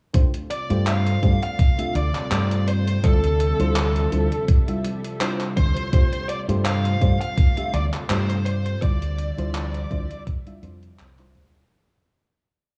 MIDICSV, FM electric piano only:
0, 0, Header, 1, 2, 480
1, 0, Start_track
1, 0, Key_signature, -1, "minor"
1, 0, Tempo, 722892
1, 96, Time_signature, 4, 2, 24, 8
1, 8481, End_track
2, 0, Start_track
2, 0, Title_t, "FM electric piano"
2, 0, Program_c, 0, 5
2, 90, Note_on_c, 0, 57, 81
2, 93, Note_on_c, 0, 62, 77
2, 96, Note_on_c, 0, 65, 74
2, 98, Note_on_c, 0, 67, 74
2, 100, Note_on_c, 0, 72, 91
2, 191, Note_off_c, 0, 57, 0
2, 192, Note_off_c, 0, 62, 0
2, 194, Note_off_c, 0, 65, 0
2, 195, Note_off_c, 0, 67, 0
2, 196, Note_off_c, 0, 72, 0
2, 462, Note_on_c, 0, 57, 96
2, 465, Note_on_c, 0, 62, 92
2, 468, Note_on_c, 0, 65, 88
2, 470, Note_on_c, 0, 67, 88
2, 472, Note_on_c, 0, 72, 101
2, 787, Note_off_c, 0, 57, 0
2, 789, Note_off_c, 0, 62, 0
2, 790, Note_off_c, 0, 65, 0
2, 791, Note_off_c, 0, 67, 0
2, 792, Note_off_c, 0, 72, 0
2, 811, Note_on_c, 0, 57, 87
2, 813, Note_on_c, 0, 62, 83
2, 816, Note_on_c, 0, 65, 81
2, 819, Note_on_c, 0, 67, 80
2, 821, Note_on_c, 0, 72, 94
2, 911, Note_off_c, 0, 57, 0
2, 913, Note_off_c, 0, 62, 0
2, 914, Note_off_c, 0, 65, 0
2, 915, Note_off_c, 0, 67, 0
2, 916, Note_off_c, 0, 72, 0
2, 1181, Note_on_c, 0, 57, 74
2, 1183, Note_on_c, 0, 62, 66
2, 1186, Note_on_c, 0, 65, 68
2, 1189, Note_on_c, 0, 67, 70
2, 1191, Note_on_c, 0, 76, 83
2, 1319, Note_off_c, 0, 57, 0
2, 1320, Note_off_c, 0, 62, 0
2, 1321, Note_off_c, 0, 65, 0
2, 1323, Note_off_c, 0, 67, 0
2, 1323, Note_off_c, 0, 76, 0
2, 1531, Note_on_c, 0, 57, 84
2, 1533, Note_on_c, 0, 62, 77
2, 1536, Note_on_c, 0, 65, 76
2, 1537, Note_on_c, 0, 67, 78
2, 1541, Note_on_c, 0, 72, 93
2, 1987, Note_off_c, 0, 57, 0
2, 1989, Note_off_c, 0, 62, 0
2, 1990, Note_off_c, 0, 65, 0
2, 1991, Note_off_c, 0, 67, 0
2, 1992, Note_off_c, 0, 72, 0
2, 2011, Note_on_c, 0, 55, 85
2, 2013, Note_on_c, 0, 62, 72
2, 2016, Note_on_c, 0, 64, 75
2, 2019, Note_on_c, 0, 65, 79
2, 2021, Note_on_c, 0, 72, 92
2, 2111, Note_off_c, 0, 55, 0
2, 2113, Note_off_c, 0, 62, 0
2, 2114, Note_off_c, 0, 64, 0
2, 2115, Note_off_c, 0, 65, 0
2, 2117, Note_off_c, 0, 72, 0
2, 2384, Note_on_c, 0, 55, 99
2, 2386, Note_on_c, 0, 62, 90
2, 2388, Note_on_c, 0, 64, 93
2, 2390, Note_on_c, 0, 65, 87
2, 2393, Note_on_c, 0, 72, 109
2, 2708, Note_off_c, 0, 55, 0
2, 2709, Note_off_c, 0, 62, 0
2, 2710, Note_off_c, 0, 64, 0
2, 2711, Note_off_c, 0, 65, 0
2, 2713, Note_off_c, 0, 72, 0
2, 2732, Note_on_c, 0, 55, 87
2, 2735, Note_on_c, 0, 62, 84
2, 2738, Note_on_c, 0, 64, 78
2, 2740, Note_on_c, 0, 65, 76
2, 2743, Note_on_c, 0, 72, 95
2, 2832, Note_off_c, 0, 55, 0
2, 2834, Note_off_c, 0, 62, 0
2, 2835, Note_off_c, 0, 64, 0
2, 2836, Note_off_c, 0, 65, 0
2, 2838, Note_off_c, 0, 72, 0
2, 3104, Note_on_c, 0, 55, 76
2, 3107, Note_on_c, 0, 62, 67
2, 3109, Note_on_c, 0, 64, 69
2, 3112, Note_on_c, 0, 65, 67
2, 3114, Note_on_c, 0, 76, 83
2, 3240, Note_off_c, 0, 55, 0
2, 3242, Note_off_c, 0, 62, 0
2, 3243, Note_off_c, 0, 64, 0
2, 3244, Note_off_c, 0, 65, 0
2, 3245, Note_off_c, 0, 76, 0
2, 3453, Note_on_c, 0, 55, 85
2, 3455, Note_on_c, 0, 62, 72
2, 3459, Note_on_c, 0, 64, 77
2, 3460, Note_on_c, 0, 65, 77
2, 3463, Note_on_c, 0, 72, 93
2, 3909, Note_off_c, 0, 55, 0
2, 3910, Note_off_c, 0, 62, 0
2, 3911, Note_off_c, 0, 64, 0
2, 3912, Note_off_c, 0, 65, 0
2, 3913, Note_off_c, 0, 72, 0
2, 3934, Note_on_c, 0, 57, 83
2, 3935, Note_on_c, 0, 62, 81
2, 3938, Note_on_c, 0, 65, 77
2, 3940, Note_on_c, 0, 67, 75
2, 3943, Note_on_c, 0, 72, 88
2, 4033, Note_off_c, 0, 57, 0
2, 4034, Note_off_c, 0, 62, 0
2, 4035, Note_off_c, 0, 65, 0
2, 4036, Note_off_c, 0, 67, 0
2, 4037, Note_off_c, 0, 72, 0
2, 4304, Note_on_c, 0, 57, 98
2, 4306, Note_on_c, 0, 62, 91
2, 4309, Note_on_c, 0, 65, 88
2, 4311, Note_on_c, 0, 67, 88
2, 4314, Note_on_c, 0, 72, 108
2, 4628, Note_off_c, 0, 57, 0
2, 4629, Note_off_c, 0, 62, 0
2, 4631, Note_off_c, 0, 65, 0
2, 4632, Note_off_c, 0, 67, 0
2, 4633, Note_off_c, 0, 72, 0
2, 4653, Note_on_c, 0, 57, 87
2, 4656, Note_on_c, 0, 62, 77
2, 4658, Note_on_c, 0, 65, 77
2, 4660, Note_on_c, 0, 67, 79
2, 4662, Note_on_c, 0, 72, 94
2, 4752, Note_off_c, 0, 57, 0
2, 4754, Note_off_c, 0, 62, 0
2, 4755, Note_off_c, 0, 65, 0
2, 4756, Note_off_c, 0, 67, 0
2, 4757, Note_off_c, 0, 72, 0
2, 5025, Note_on_c, 0, 57, 75
2, 5027, Note_on_c, 0, 62, 69
2, 5030, Note_on_c, 0, 65, 65
2, 5032, Note_on_c, 0, 67, 70
2, 5035, Note_on_c, 0, 76, 83
2, 5161, Note_off_c, 0, 57, 0
2, 5162, Note_off_c, 0, 62, 0
2, 5163, Note_off_c, 0, 65, 0
2, 5164, Note_off_c, 0, 67, 0
2, 5166, Note_off_c, 0, 76, 0
2, 5373, Note_on_c, 0, 57, 88
2, 5376, Note_on_c, 0, 62, 80
2, 5378, Note_on_c, 0, 65, 78
2, 5380, Note_on_c, 0, 67, 79
2, 5383, Note_on_c, 0, 72, 96
2, 5829, Note_off_c, 0, 57, 0
2, 5830, Note_off_c, 0, 62, 0
2, 5831, Note_off_c, 0, 65, 0
2, 5832, Note_off_c, 0, 67, 0
2, 5833, Note_off_c, 0, 72, 0
2, 5852, Note_on_c, 0, 55, 82
2, 5854, Note_on_c, 0, 62, 75
2, 5857, Note_on_c, 0, 64, 82
2, 5859, Note_on_c, 0, 65, 76
2, 5862, Note_on_c, 0, 72, 91
2, 5952, Note_off_c, 0, 55, 0
2, 5953, Note_off_c, 0, 62, 0
2, 5954, Note_off_c, 0, 64, 0
2, 5955, Note_off_c, 0, 65, 0
2, 5957, Note_off_c, 0, 72, 0
2, 6223, Note_on_c, 0, 55, 96
2, 6225, Note_on_c, 0, 62, 89
2, 6228, Note_on_c, 0, 64, 92
2, 6231, Note_on_c, 0, 65, 92
2, 6233, Note_on_c, 0, 72, 113
2, 6548, Note_off_c, 0, 55, 0
2, 6549, Note_off_c, 0, 62, 0
2, 6550, Note_off_c, 0, 64, 0
2, 6552, Note_off_c, 0, 65, 0
2, 6553, Note_off_c, 0, 72, 0
2, 6574, Note_on_c, 0, 55, 89
2, 6576, Note_on_c, 0, 62, 84
2, 6578, Note_on_c, 0, 64, 85
2, 6581, Note_on_c, 0, 65, 85
2, 6583, Note_on_c, 0, 72, 99
2, 6673, Note_off_c, 0, 55, 0
2, 6674, Note_off_c, 0, 62, 0
2, 6675, Note_off_c, 0, 64, 0
2, 6676, Note_off_c, 0, 65, 0
2, 6678, Note_off_c, 0, 72, 0
2, 6944, Note_on_c, 0, 55, 75
2, 6946, Note_on_c, 0, 62, 69
2, 6949, Note_on_c, 0, 64, 66
2, 6952, Note_on_c, 0, 65, 70
2, 6954, Note_on_c, 0, 76, 87
2, 7033, Note_off_c, 0, 55, 0
2, 7034, Note_off_c, 0, 62, 0
2, 7035, Note_off_c, 0, 64, 0
2, 7037, Note_off_c, 0, 65, 0
2, 7038, Note_off_c, 0, 76, 0
2, 7053, Note_on_c, 0, 55, 80
2, 7057, Note_on_c, 0, 62, 73
2, 7058, Note_on_c, 0, 64, 79
2, 7061, Note_on_c, 0, 65, 78
2, 7063, Note_on_c, 0, 72, 90
2, 7394, Note_off_c, 0, 55, 0
2, 7396, Note_off_c, 0, 62, 0
2, 7397, Note_off_c, 0, 64, 0
2, 7398, Note_off_c, 0, 65, 0
2, 7399, Note_off_c, 0, 72, 0
2, 7424, Note_on_c, 0, 55, 104
2, 7426, Note_on_c, 0, 62, 90
2, 7429, Note_on_c, 0, 64, 86
2, 7432, Note_on_c, 0, 65, 89
2, 7434, Note_on_c, 0, 72, 108
2, 7508, Note_off_c, 0, 55, 0
2, 7509, Note_off_c, 0, 62, 0
2, 7511, Note_off_c, 0, 64, 0
2, 7512, Note_off_c, 0, 65, 0
2, 7513, Note_off_c, 0, 72, 0
2, 7533, Note_on_c, 0, 55, 77
2, 7535, Note_on_c, 0, 62, 70
2, 7537, Note_on_c, 0, 64, 71
2, 7540, Note_on_c, 0, 65, 71
2, 7543, Note_on_c, 0, 72, 87
2, 7748, Note_off_c, 0, 55, 0
2, 7749, Note_off_c, 0, 62, 0
2, 7751, Note_off_c, 0, 64, 0
2, 7752, Note_off_c, 0, 65, 0
2, 7753, Note_off_c, 0, 72, 0
2, 8481, End_track
0, 0, End_of_file